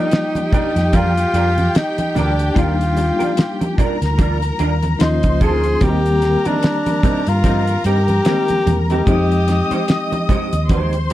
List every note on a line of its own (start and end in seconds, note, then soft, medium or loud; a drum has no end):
0.00 2.51 F3 medium
0.00 2.52 G3 medium
0.00 2.52 A#3 medium
0.00 0.50 D#4 medium
0.00 2.53 F4 medium
0.00 3.74 G4 medium
0.00 2.53 D5 medium
0.00 3.74 G5 medium
0.11 muted clean electric guitar stroke soft
0.11 snare loud
0.11 closed hi-hat medium
0.11 muted conga soft
0.35 muted clean electric guitar stroke soft
0.35 closed hi-hat soft
0.35 high conga medium
0.52 0.69 G3 medium
0.52 0.69 D4 medium
0.52 0.97 D#4 medium
0.52 0.70 F4 medium
0.52 0.70 A#4 medium
0.52 muted fingered electric bass stroke soft
0.52 kick medium
0.52 closed hi-hat medium
0.52 muted conga soft
0.52 low conga medium
0.76 1.24 F2 medium
0.76 muted clean electric guitar stroke soft
0.76 snare soft
0.76 closed hi-hat medium
0.93 1.10 G3 medium
0.93 1.10 D4 medium
0.93 1.10 F4 medium
0.93 1.79 F4 loud
0.93 1.11 A#4 medium
0.93 kick medium
0.93 closed hi-hat medium
0.93 high conga medium
1.17 muted clean electric guitar stroke soft
1.17 closed hi-hat medium
1.34 1.68 F2 medium
1.34 1.47 G3 soft
1.34 1.48 D4 medium
1.34 1.48 F4 soft
1.34 1.48 A#4 medium
1.34 closed hi-hat medium
1.58 muted clean electric guitar stroke soft
1.58 closed hi-hat soft
1.58 high conga medium
1.75 2.20 D#4 medium
1.75 muted clean electric guitar stroke soft
1.75 snare loud
1.75 closed hi-hat medium
1.75 muted conga soft
1.98 muted clean electric guitar stroke soft
1.98 closed hi-hat medium
1.98 high conga medium
2.15 2.49 D2 medium
2.15 2.32 G3 medium
2.15 2.32 D4 medium
2.15 2.57 D4 medium
2.15 2.33 F4 medium
2.15 2.33 A#4 medium
2.15 closed hi-hat medium
2.15 muted conga soft
2.15 high conga medium
2.15 low conga medium
2.39 muted clean electric guitar stroke soft
2.39 closed hi-hat soft
2.54 3.10 D#2 medium
2.54 2.72 G3 medium
2.54 4.96 G3 medium
2.54 4.96 A#3 medium
2.54 2.73 D4 medium
2.54 4.96 D4 medium
2.54 4.95 D#4 medium
2.54 2.73 F4 medium
2.54 4.97 F4 medium
2.54 2.73 A#4 medium
2.54 kick loud
2.54 closed hi-hat medium
2.54 muted conga soft
2.54 low conga medium
2.59 3.75 F4 medium
2.81 closed hi-hat soft
2.97 muted clean electric guitar stroke soft
2.97 closed hi-hat medium
2.97 muted conga soft
3.19 3.30 G3 soft
3.19 3.30 D4 medium
3.19 3.30 F4 medium
3.19 3.29 A#4 medium
3.19 muted fingered electric bass stroke soft
3.19 closed hi-hat medium
3.19 high conga soft
3.37 muted clean electric guitar stroke soft
3.37 snare loud
3.37 closed hi-hat medium
3.37 muted conga soft
3.61 muted clean electric guitar stroke medium
3.61 closed hi-hat soft
3.61 high conga medium
3.78 3.95 G3 medium
3.78 3.95 D4 medium
3.78 3.95 F4 medium
3.78 4.98 A#4 medium
3.78 3.96 A#4 medium
3.78 4.98 A#5 medium
3.78 muted fingered electric bass stroke soft
3.78 kick loud
3.78 closed hi-hat medium
3.78 muted conga soft
3.78 low conga medium
4.02 4.50 D2 medium
4.02 muted clean electric guitar stroke soft
4.02 snare soft
4.02 closed hi-hat medium
4.18 4.35 G3 medium
4.18 4.36 D4 medium
4.18 4.36 F4 medium
4.18 4.36 A#4 medium
4.18 kick medium
4.18 closed hi-hat medium
4.18 high conga medium
4.42 muted clean electric guitar stroke soft
4.42 closed hi-hat medium
4.59 4.93 D#2 medium
4.59 4.73 G3 medium
4.59 4.73 D4 medium
4.59 4.73 F4 medium
4.59 4.73 A#4 medium
4.59 closed hi-hat medium
4.59 muted conga soft
4.83 muted clean electric guitar stroke soft
4.83 closed hi-hat soft
4.83 high conga medium
4.99 5.20 D#2 medium
4.99 5.81 F3 medium
4.99 5.80 A#3 medium
4.99 5.82 C#4 medium
4.99 5.81 D#4 medium
4.99 5.45 D#4 medium
4.99 5.82 F4 medium
4.99 5.80 C5 medium
4.99 5.80 C6 medium
4.99 muted clean electric guitar stroke soft
4.99 snare loud
4.99 closed hi-hat medium
5.23 5.41 C#2 medium
5.23 muted clean electric guitar stroke soft
5.23 kick medium
5.23 closed hi-hat medium
5.23 high conga medium
5.41 5.75 D2 medium
5.41 5.64 G3 medium
5.41 5.64 C#4 medium
5.41 5.64 F4 medium
5.41 5.85 G#4 loud
5.41 5.64 A#4 medium
5.41 kick medium
5.41 closed hi-hat medium
5.41 high conga medium
5.41 low conga medium
5.64 muted clean electric guitar stroke soft
5.64 closed hi-hat soft
5.80 6.35 D#2 medium
5.80 8.21 D#3 medium
5.80 8.21 G3 medium
5.80 5.98 G3 medium
5.80 8.21 A#3 medium
5.80 8.22 C4 medium
5.80 5.99 C4 medium
5.80 5.99 D#4 medium
5.80 5.90 F#4 medium
5.80 6.48 G4 loud
5.80 9.03 A#4 medium
5.80 5.99 A#4 medium
5.80 9.03 A#5 loud
5.80 kick loud
5.80 closed hi-hat medium
5.80 low conga medium
5.89 8.25 G4 medium
6.06 closed hi-hat soft
6.22 muted clean electric guitar stroke soft
6.22 snare soft
6.22 closed hi-hat medium
6.45 6.56 G3 soft
6.45 6.56 C4 medium
6.45 7.30 D4 medium
6.45 6.56 D#4 medium
6.45 6.55 A#4 medium
6.45 muted fingered electric bass stroke soft
6.45 closed hi-hat medium
6.45 high conga soft
6.63 muted clean electric guitar stroke soft
6.63 snare loud
6.63 closed hi-hat medium
6.86 muted clean electric guitar stroke soft
6.86 closed hi-hat medium
6.86 high conga medium
7.03 7.21 G3 medium
7.03 7.21 C4 medium
7.03 7.21 D#4 medium
7.03 7.21 A#4 medium
7.03 muted fingered electric bass stroke soft
7.03 kick loud
7.03 closed hi-hat medium
7.03 low conga medium
7.27 7.75 G2 medium
7.27 7.86 F4 loud
7.27 muted clean electric guitar stroke soft
7.27 closed hi-hat medium
7.44 7.61 G3 medium
7.44 7.62 C4 medium
7.44 7.62 D#4 medium
7.44 7.62 A#4 medium
7.44 kick medium
7.44 closed hi-hat medium
7.44 muted conga soft
7.44 high conga medium
7.67 muted clean electric guitar stroke soft
7.67 closed hi-hat medium
7.84 8.19 G2 medium
7.84 7.98 G3 medium
7.84 7.99 C4 medium
7.84 7.99 D#4 medium
7.84 8.87 G4 loud
7.84 7.99 A#4 medium
7.84 closed hi-hat medium
7.84 muted conga soft
8.08 muted clean electric guitar stroke soft
8.08 closed hi-hat soft
8.08 high conga medium
8.25 9.07 D#3 soft
8.25 8.43 G3 medium
8.25 9.05 G#3 soft
8.25 9.07 A#3 soft
8.25 8.43 C4 medium
8.25 9.06 C4 soft
8.25 8.43 D#4 medium
8.25 9.07 G4 soft
8.25 8.43 A#4 medium
8.25 snare loud
8.25 closed hi-hat medium
8.48 closed hi-hat medium
8.48 high conga medium
8.66 9.00 E2 medium
8.66 muted clean electric guitar stroke soft
8.66 closed hi-hat medium
8.66 muted conga soft
8.66 high conga medium
8.66 low conga medium
8.90 9.00 G3 medium
8.90 9.00 C4 medium
8.90 9.00 D#4 medium
8.90 10.50 G4 medium
8.90 9.00 A#4 medium
8.90 closed hi-hat soft
9.05 9.61 F2 loud
9.05 11.13 F3 medium
9.05 11.13 G#3 medium
9.05 9.24 G#3 medium
9.05 11.13 C4 medium
9.05 11.13 D#4 medium
9.05 9.24 D#4 medium
9.05 9.24 G4 medium
9.05 11.13 G4 medium
9.05 9.25 C5 medium
9.05 10.66 D#5 medium
9.05 10.66 D#6 medium
9.05 kick loud
9.05 closed hi-hat medium
9.05 low conga medium
9.32 closed hi-hat soft
9.48 muted clean electric guitar stroke soft
9.48 snare soft
9.48 closed hi-hat medium
9.71 9.81 G#3 soft
9.71 9.81 D#4 medium
9.71 9.81 G4 medium
9.71 9.81 C5 medium
9.71 muted fingered electric bass stroke soft
9.71 closed hi-hat medium
9.71 high conga soft
9.88 muted clean electric guitar stroke soft
9.88 snare loud
9.88 closed hi-hat medium
9.88 muted conga soft
10.12 muted clean electric guitar stroke soft
10.12 closed hi-hat soft
10.12 high conga medium
10.29 10.46 G#3 medium
10.29 10.46 D#4 medium
10.29 10.46 G4 medium
10.29 10.47 C5 medium
10.29 muted fingered electric bass stroke soft
10.29 kick medium
10.29 closed hi-hat medium
10.29 muted conga soft
10.29 low conga medium
10.53 11.10 D#2 medium
10.53 muted clean electric guitar stroke soft
10.53 closed hi-hat medium
10.69 10.93 G#3 medium
10.69 10.93 D#4 medium
10.69 10.93 G4 medium
10.69 11.13 C5 medium
10.69 10.93 C5 medium
10.69 11.13 C6 medium
10.69 kick medium
10.69 closed hi-hat medium
10.69 muted conga soft
10.69 high conga medium
10.93 muted clean electric guitar stroke soft
10.93 closed hi-hat medium
11.10 closed hi-hat medium